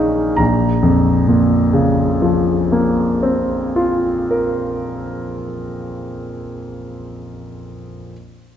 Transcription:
0.00 0.34 A#1 soft
0.00 0.41 C#4 soft
0.00 0.41 D#4 soft
0.00 0.18 G#4 soft
0.00 0.37 F5 medium
0.36 4.07 A#1 soft
0.36 4.06 A#5 soft
0.82 4.52 F2 soft
1.28 4.98 A#2 soft
1.73 5.43 C#3 soft
2.22 5.91 F3 soft
2.72 6.41 A#3 soft
3.23 6.92 C4 soft
3.76 7.30 F4 soft
4.31 7.30 A#4 soft

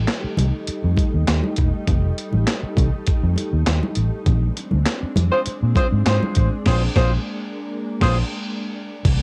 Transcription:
0.00 4.22 G3 medium
0.00 4.22 A3 medium
0.00 4.22 D#4 medium
0.07 snare loud
0.07 clap medium
0.07 closed hi-hat medium
0.24 muted fingered electric bass stroke soft
0.37 0.50 C2 loud
0.37 closed hi-hat medium
0.37 muted conga soft
0.37 high conga medium
0.37 low conga medium
0.67 muted fingered electric bass stroke soft
0.67 closed hi-hat medium
0.84 0.95 F2 loud
0.97 kick medium
0.97 closed hi-hat medium
0.97 muted conga soft
0.97 high conga medium
1.14 1.25 D#2 medium
1.27 1.40 D#2 medium
1.27 snare loud
1.27 clap medium
1.27 closed hi-hat medium
1.44 high conga medium
1.56 1.70 E1 medium
1.56 kick medium
1.56 closed hi-hat medium
1.56 muted conga soft
1.87 2.10 F1 medium
1.87 kick loud
1.87 closed hi-hat medium
1.87 muted conga soft
1.87 low conga medium
2.18 closed hi-hat medium
2.32 2.44 A1 medium
2.32 high conga medium
2.47 snare loud
2.47 clap medium
2.47 closed hi-hat medium
2.47 muted conga soft
2.63 muted fingered electric bass stroke medium
2.77 2.89 C2 medium
2.77 kick loud
2.77 closed hi-hat medium
2.77 muted conga soft
2.77 high conga medium
2.77 low conga medium
3.06 muted fingered electric bass stroke soft
3.06 kick loud
3.06 closed hi-hat medium
3.06 muted conga soft
3.23 3.34 F2 medium
3.36 closed hi-hat medium
3.36 high conga medium
3.53 3.63 D#2 medium
3.66 3.79 D#2 medium
3.66 snare loud
3.66 clap medium
3.66 closed hi-hat medium
3.66 muted conga soft
3.83 high conga medium
3.95 4.09 A1 medium
3.95 closed hi-hat medium
4.26 4.49 A#1 medium
4.26 9.01 G#3 medium
4.26 6.64 C4 medium
4.26 9.01 D4 medium
4.26 kick loud
4.26 closed hi-hat medium
4.26 low conga medium
4.57 closed hi-hat medium
4.57 muted conga soft
4.71 4.83 D2 medium
4.71 high conga medium
4.86 snare loud
4.86 clap medium
4.86 closed hi-hat medium
5.03 muted fingered electric bass stroke medium
5.16 5.28 F2 medium
5.16 closed hi-hat medium
5.16 muted conga soft
5.16 high conga medium
5.16 low conga medium
5.31 5.40 C4 loud
5.31 5.40 F4 loud
5.31 5.40 G#4 loud
5.31 5.40 C5 loud
5.46 muted fingered electric bass stroke soft
5.46 closed hi-hat medium
5.46 muted conga soft
5.63 5.73 A#2 medium
5.75 5.86 C4 loud
5.75 5.86 F4 loud
5.75 5.86 G#4 loud
5.75 5.86 C5 loud
5.75 kick medium
5.75 closed hi-hat medium
5.75 muted conga soft
5.75 high conga medium
5.92 6.03 G#2 medium
6.05 6.18 G#2 medium
6.05 6.49 C4 medium
6.05 6.49 F4 medium
6.05 6.49 G#4 medium
6.05 6.49 C5 loud
6.05 snare loud
6.05 clap medium
6.05 closed hi-hat medium
6.05 muted conga soft
6.23 high conga medium
6.35 6.48 A1 medium
6.35 kick medium
6.35 closed hi-hat medium
6.35 muted conga soft
6.66 6.87 A#1 loud
6.66 9.03 A#3 medium
6.66 6.81 C4 medium
6.66 6.81 F4 medium
6.66 6.81 G#4 medium
6.66 6.81 C5 medium
6.66 kick loud
6.66 snare loud
6.66 crash medium
6.95 7.16 A#1 medium
6.95 7.11 C4 medium
6.95 7.11 F4 loud
6.95 7.11 G#4 loud
6.95 7.11 C5 loud
6.95 kick loud
6.95 snare loud
8.00 8.22 A#1 loud
8.00 8.16 C4 loud
8.00 8.16 F4 loud
8.00 8.16 G#4 loud
8.00 8.16 C5 loud
8.00 kick loud
8.00 snare loud
8.00 crash medium
9.05 9.17 C2 medium
9.05 9.22 E3 medium
9.05 9.22 A#3 medium
9.05 9.22 D5 medium
9.05 kick loud
9.05 closed hi-hat medium
9.05 crash medium
9.05 muted conga soft
9.05 low conga medium

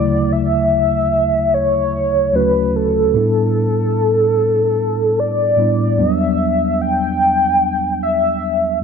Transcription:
0.00 1.07 D2 medium
0.00 1.08 C#3 medium
0.00 1.07 F#3 medium
0.00 1.08 A3 medium
0.00 1.08 E4 medium
0.00 0.34 D5 medium
0.32 1.56 E5 loud
1.54 2.37 C#5 loud
2.33 2.94 D2 medium
2.33 2.95 F#3 medium
2.33 2.95 A3 medium
2.33 2.95 C#4 medium
2.33 2.96 F#4 medium
2.33 2.78 B4 loud
2.76 5.21 A4 loud
3.14 4.31 A2 medium
3.14 4.32 G3 medium
3.14 4.32 B3 medium
3.14 4.32 D4 medium
3.14 4.33 E4 medium
5.20 6.02 D5 loud
5.57 5.98 A2 medium
5.57 5.97 G3 medium
5.57 5.98 B3 medium
5.57 5.98 D4 medium
5.57 6.00 E4 medium
5.98 7.29 E2 medium
5.98 7.30 F#3 medium
5.98 7.29 G3 medium
5.98 7.30 B3 medium
5.98 7.30 D4 medium
5.98 6.83 E5 loud
6.81 8.02 G5 loud
8.03 8.79 E5 loud

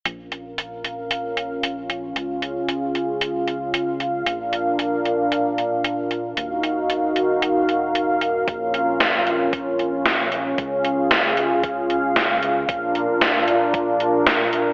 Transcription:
0.05 2.13 A#1 medium
0.05 4.23 C#4 medium
0.05 6.33 F4 medium
0.05 2.14 A#4 medium
0.05 2.14 F5 medium
0.05 closed hi-hat medium
0.32 closed hi-hat medium
0.58 closed hi-hat medium
0.84 closed hi-hat medium
1.11 closed hi-hat medium
1.37 closed hi-hat medium
1.63 closed hi-hat medium
1.90 closed hi-hat medium
2.16 4.24 C#2 medium
2.16 4.25 G#4 medium
2.16 6.33 F5 medium
2.16 closed hi-hat medium
2.42 closed hi-hat medium
2.69 closed hi-hat medium
2.95 closed hi-hat medium
3.21 closed hi-hat medium
3.48 closed hi-hat medium
3.74 closed hi-hat medium
4.00 closed hi-hat medium
4.26 6.35 A#1 medium
4.26 6.35 D4 medium
4.26 6.35 A#4 medium
4.26 closed hi-hat medium
4.53 closed hi-hat medium
4.79 closed hi-hat medium
5.05 closed hi-hat medium
5.32 closed hi-hat medium
5.58 closed hi-hat medium
5.84 closed hi-hat medium
6.11 closed hi-hat medium
6.37 8.45 D#1 medium
6.37 8.45 D#4 medium
6.37 8.45 F#4 medium
6.37 10.54 A#4 medium
6.37 10.54 F5 medium
6.37 closed hi-hat medium
6.63 closed hi-hat medium
6.90 closed hi-hat medium
7.16 closed hi-hat medium
7.42 closed hi-hat medium
7.69 closed hi-hat medium
7.95 closed hi-hat medium
8.21 closed hi-hat medium
8.48 10.56 A#1 medium
8.48 12.65 C#4 medium
8.48 10.56 F4 medium
8.48 kick loud
8.48 closed hi-hat medium
8.74 closed hi-hat medium
9.00 kick loud
9.00 snare loud
9.00 closed hi-hat medium
9.27 closed hi-hat medium
9.53 kick loud
9.53 closed hi-hat medium
9.79 closed hi-hat medium
10.06 kick loud
10.06 snare loud
10.06 closed hi-hat medium
10.32 closed hi-hat medium
10.58 12.66 C#2 medium
10.58 12.67 F4 medium
10.58 12.67 G#4 medium
10.58 14.73 F5 medium
10.58 kick loud
10.58 closed hi-hat medium
10.85 closed hi-hat medium
11.11 kick loud
11.11 snare loud
11.11 closed hi-hat medium
11.37 closed hi-hat medium
11.63 kick loud
11.63 closed hi-hat medium
11.90 closed hi-hat medium
12.16 kick loud
12.16 snare loud
12.16 closed hi-hat medium
12.43 closed hi-hat medium
12.69 14.73 A#1 medium
12.69 14.73 D4 medium
12.69 14.73 F4 medium
12.69 14.73 A#4 medium
12.69 kick loud
12.69 closed hi-hat medium
12.95 closed hi-hat medium
13.21 kick loud
13.21 snare loud
13.21 closed hi-hat medium
13.48 closed hi-hat medium
13.74 kick loud
13.74 closed hi-hat medium
14.00 closed hi-hat medium
14.27 kick loud
14.27 snare loud
14.27 closed hi-hat medium
14.53 closed hi-hat medium

